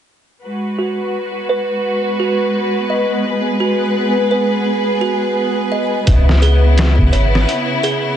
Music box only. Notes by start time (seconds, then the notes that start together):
0.79 F#4
1.49 B4
2.20 F#4
2.90 D#5
3.60 F#4
4.31 B4
5.01 F#4
5.72 D#5
6.42 G#4
7.13 C#5
7.83 G#4